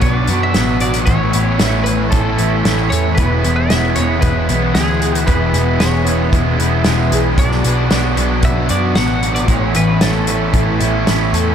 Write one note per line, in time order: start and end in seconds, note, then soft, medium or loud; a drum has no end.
0.00 0.27 B1 medium
0.00 0.28 F#3 medium
0.00 0.31 F#3 medium
0.00 0.29 B3 medium
0.00 0.30 B3 medium
0.00 0.55 B3 medium
0.00 0.28 D4 medium
0.00 0.82 D4 medium
0.00 0.26 F#4 medium
0.00 0.13 C#5 loud
0.00 kick loud
0.00 closed hi-hat medium
0.13 0.43 D5 loud
0.27 0.54 F#2 medium
0.27 1.08 F#3 medium
0.27 0.60 B3 medium
0.27 0.54 B3 medium
0.27 0.55 D4 medium
0.27 0.56 F#4 medium
0.27 closed hi-hat medium
0.32 0.57 F#3 medium
0.43 0.81 E5 loud
0.53 1.05 A1 medium
0.53 1.07 B2 medium
0.53 1.05 F#3 medium
0.53 1.08 B3 medium
0.53 1.34 B3 medium
0.53 1.07 D4 medium
0.53 1.07 F#4 medium
0.53 snare loud
0.53 closed hi-hat medium
0.58 1.08 F#3 medium
0.58 1.12 B3 medium
0.80 1.08 F#4 medium
0.80 1.05 D5 medium
0.80 closed hi-hat medium
0.94 closed hi-hat medium
1.06 1.33 A1 medium
1.06 1.59 A2 medium
1.06 1.59 E3 medium
1.06 1.87 E3 medium
1.06 1.34 A3 loud
1.06 1.33 C#4 medium
1.06 1.32 E4 loud
1.06 1.88 C#5 loud
1.06 kick loud
1.06 closed hi-hat medium
1.10 1.60 A2 medium
1.10 1.38 E3 medium
1.10 1.33 A3 medium
1.32 1.59 A1 medium
1.32 1.63 A3 medium
1.32 1.59 A3 medium
1.32 2.13 B3 medium
1.32 1.61 C#4 medium
1.32 1.62 E4 medium
1.32 closed hi-hat medium
1.39 1.63 E3 medium
1.59 2.10 A1 medium
1.59 2.13 A2 medium
1.59 2.64 E3 medium
1.59 1.90 E3 medium
1.59 1.88 A3 medium
1.59 3.23 C#4 medium
1.59 1.86 C#4 medium
1.59 1.85 E4 medium
1.59 snare loud
1.59 closed hi-hat medium
1.64 1.86 A3 medium
1.84 2.39 E3 medium
1.84 2.38 A3 medium
1.84 2.39 C#4 medium
1.84 2.38 E4 medium
1.84 2.10 B4 medium
1.84 closed hi-hat medium
1.89 2.43 E3 medium
1.89 2.40 A3 medium
2.10 2.38 A1 medium
2.10 2.65 B3 medium
2.10 2.93 A4 medium
2.10 kick loud
2.10 closed hi-hat medium
2.38 2.64 A1 medium
2.38 5.90 E3 medium
2.38 2.66 A3 medium
2.38 2.64 A3 medium
2.38 2.67 C#4 medium
2.38 2.68 E4 medium
2.38 closed hi-hat medium
2.43 2.66 E3 medium
2.64 2.90 A1 medium
2.64 3.16 A2 medium
2.64 3.17 E3 medium
2.64 3.21 E3 medium
2.64 3.17 A3 medium
2.64 3.18 A3 medium
2.64 3.19 B3 medium
2.64 3.19 C#4 medium
2.64 3.20 E4 medium
2.64 snare loud
2.64 closed hi-hat medium
2.90 3.17 E2 medium
2.90 3.19 A4 medium
2.90 3.18 C#5 medium
2.90 closed hi-hat medium
3.15 3.43 E1 medium
3.15 3.71 E2 medium
3.15 3.71 E3 medium
3.15 3.47 G#3 medium
3.15 3.57 B4 medium
3.15 kick loud
3.15 closed hi-hat medium
3.19 3.46 B2 medium
3.19 3.43 E3 medium
3.19 3.44 B3 medium
3.19 3.45 B3 loud
3.19 3.44 E4 loud
3.44 3.70 E1 medium
3.44 3.72 B2 medium
3.44 3.74 E3 medium
3.44 3.72 G#3 medium
3.44 3.98 B3 medium
3.44 3.73 B3 medium
3.44 3.74 E4 medium
3.44 closed hi-hat medium
3.56 3.95 E5 medium
3.70 3.96 E1 medium
3.70 4.75 E2 medium
3.70 4.00 B2 medium
3.70 4.75 E3 medium
3.70 4.01 G#3 medium
3.70 3.98 B3 medium
3.70 5.03 C#4 medium
3.70 3.97 E4 medium
3.70 snare loud
3.70 closed hi-hat medium
3.75 3.98 E3 medium
3.96 4.22 E1 medium
3.96 4.48 E3 medium
3.96 4.24 B3 medium
3.96 4.51 B3 medium
3.96 4.48 E4 medium
3.96 4.23 C#5 medium
3.96 closed hi-hat medium
4.01 4.52 B2 medium
4.01 4.51 G#3 medium
4.21 4.48 E1 medium
4.21 4.49 B3 medium
4.21 4.74 B4 medium
4.21 kick loud
4.21 closed hi-hat medium
4.49 4.74 B1 medium
4.49 4.77 E3 medium
4.49 4.76 G#3 medium
4.49 4.75 B3 medium
4.49 4.78 B3 medium
4.49 4.78 E4 medium
4.49 closed hi-hat medium
4.53 4.75 B2 medium
4.75 5.25 D2 medium
4.75 5.25 E2 medium
4.75 5.27 B2 medium
4.75 5.26 E3 medium
4.75 5.28 G#3 medium
4.75 5.28 B3 medium
4.75 5.29 B3 medium
4.75 5.26 G#4 medium
4.75 snare loud
4.75 closed hi-hat medium
4.79 5.29 E3 medium
4.79 5.29 E4 medium
5.01 6.33 G#4 medium
5.01 closed hi-hat medium
5.15 closed hi-hat medium
5.27 5.53 E1 medium
5.27 5.79 E2 medium
5.27 5.57 B2 medium
5.27 5.78 E3 medium
5.27 5.53 E3 medium
5.27 5.56 G#3 medium
5.27 5.53 B3 medium
5.27 5.55 B3 loud
5.27 5.82 B4 medium
5.27 kick loud
5.27 closed hi-hat medium
5.31 5.53 E4 loud
5.53 5.79 E1 medium
5.53 5.83 E3 medium
5.53 6.04 B3 medium
5.53 5.81 B3 medium
5.53 5.81 E4 medium
5.53 closed hi-hat medium
5.58 5.81 B2 medium
5.58 5.79 G#3 medium
5.80 6.30 E1 medium
5.80 6.33 E2 medium
5.80 6.07 B2 medium
5.80 6.33 E3 medium
5.80 6.09 G#3 medium
5.80 6.08 B3 medium
5.80 7.12 C#4 medium
5.80 6.06 E4 medium
5.80 6.30 C#5 medium
5.80 snare loud
5.80 closed hi-hat medium
5.84 6.04 E3 medium
6.05 6.60 B2 medium
6.05 6.56 E3 medium
6.05 6.31 B3 medium
6.05 6.61 B3 medium
6.05 6.58 E4 medium
6.05 closed hi-hat medium
6.10 6.62 G#3 medium
6.31 6.58 E1 medium
6.31 6.59 B3 medium
6.31 kick loud
6.31 closed hi-hat medium
6.57 6.84 E1 medium
6.57 6.85 B2 medium
6.57 6.86 E3 medium
6.57 6.86 B3 medium
6.57 6.87 E4 medium
6.57 closed hi-hat medium
6.61 6.85 G#3 medium
6.61 6.87 B3 medium
6.84 7.11 E1 medium
6.84 7.36 E2 medium
6.84 7.36 B2 medium
6.84 7.37 E3 medium
6.84 7.38 E3 medium
6.84 7.37 G#3 medium
6.84 7.66 B3 medium
6.84 7.40 B3 medium
6.84 7.38 E4 medium
6.84 snare loud
6.84 closed hi-hat medium
7.12 7.37 B1 medium
7.12 7.39 G#4 medium
7.12 closed hi-hat medium
7.37 7.63 B1 medium
7.37 7.89 B2 medium
7.37 7.91 B2 medium
7.37 7.89 F#3 medium
7.37 7.66 F#3 medium
7.37 8.18 F#3 medium
7.37 7.68 B3 medium
7.37 7.66 D4 medium
7.37 8.44 D5 medium
7.37 kick loud
7.37 closed hi-hat medium
7.41 7.64 B3 medium
7.41 7.64 F#4 loud
7.52 snare soft
7.64 7.90 B1 medium
7.64 7.91 F#3 medium
7.64 7.92 B3 medium
7.64 8.45 B3 medium
7.64 7.91 D4 medium
7.64 7.92 F#4 medium
7.64 closed hi-hat medium
7.68 7.91 B3 medium
7.90 8.16 B1 medium
7.90 8.43 B2 medium
7.90 8.43 F#3 medium
7.90 8.18 F#3 medium
7.90 8.20 B3 medium
7.90 8.15 B3 medium
7.90 8.17 D4 medium
7.90 9.24 D4 medium
7.90 8.16 F#4 medium
7.90 snare loud
7.90 closed hi-hat medium
8.15 8.42 B1 medium
8.15 8.70 F#3 medium
8.15 8.67 B3 medium
8.15 8.70 D4 medium
8.15 8.67 F#4 medium
8.15 closed hi-hat medium
8.20 8.71 B3 medium
8.43 8.69 B1 medium
8.43 8.96 B3 medium
8.43 8.70 E5 medium
8.43 kick loud
8.43 closed hi-hat medium
8.68 8.95 F#2 medium
8.68 8.97 F#3 medium
8.68 9.50 F#3 medium
8.68 8.99 B3 medium
8.68 8.97 D4 medium
8.68 8.98 F#4 medium
8.68 8.95 D5 medium
8.68 closed hi-hat medium
8.72 8.97 B3 medium
8.95 9.46 A1 medium
8.95 9.45 B2 medium
8.95 9.47 F#3 medium
8.95 9.48 F#3 medium
8.95 9.76 B3 medium
8.95 9.48 B3 medium
8.95 9.49 B3 medium
8.95 9.49 D4 medium
8.95 9.49 F#4 medium
8.95 9.34 F#5 loud
8.95 snare loud
8.95 closed hi-hat medium
9.23 9.50 F#4 medium
9.23 closed hi-hat medium
9.35 9.47 D5 medium
9.35 closed hi-hat medium
9.46 9.74 A1 medium
9.46 10.00 A2 medium
9.46 10.01 A2 medium
9.46 10.00 E3 medium
9.46 9.77 E3 medium
9.46 9.77 A3 medium
9.46 9.73 A3 medium
9.46 9.75 C#4 medium
9.46 9.75 C#5 medium
9.46 kick loud
9.46 closed hi-hat medium
9.51 10.28 E3 medium
9.51 9.74 E4 loud
9.74 10.01 A1 medium
9.74 10.03 E3 medium
9.74 10.03 A3 medium
9.74 10.00 A3 medium
9.74 10.55 B3 medium
9.74 10.02 C#4 medium
9.74 10.03 E4 medium
9.74 10.03 B4 medium
9.74 closed hi-hat medium
10.00 10.52 A1 medium
10.00 10.54 A2 medium
10.00 11.06 E3 medium
10.00 10.30 E3 medium
10.00 10.30 A3 medium
10.00 11.55 C#4 medium
10.00 10.29 C#4 medium
10.00 10.28 E4 medium
10.00 11.03 A4 medium
10.00 snare loud
10.00 closed hi-hat medium
10.04 10.25 A3 medium
10.27 10.83 E3 medium
10.27 10.84 E3 medium
10.27 10.79 A3 medium
10.27 10.81 C#4 medium
10.27 10.79 E4 medium
10.27 closed hi-hat medium
10.31 10.81 A3 medium
10.54 10.79 A1 medium
10.54 11.07 B3 medium
10.54 kick loud
10.54 closed hi-hat medium
10.79 11.06 A1 medium
10.79 11.10 A3 medium
10.79 11.06 A3 medium
10.79 11.08 C#4 medium
10.79 11.09 E4 medium
10.79 closed hi-hat medium
10.83 11.55 E3 medium
10.83 11.08 E3 medium
11.06 11.32 A1 medium
11.06 11.55 A2 medium
11.06 11.55 E3 medium
11.06 11.55 A3 medium
11.06 11.55 B3 medium
11.06 11.55 C#4 medium
11.06 11.55 E4 medium
11.06 snare loud
11.06 closed hi-hat medium
11.11 11.55 A3 medium
11.33 11.55 E2 medium
11.33 11.55 A4 medium
11.33 closed hi-hat medium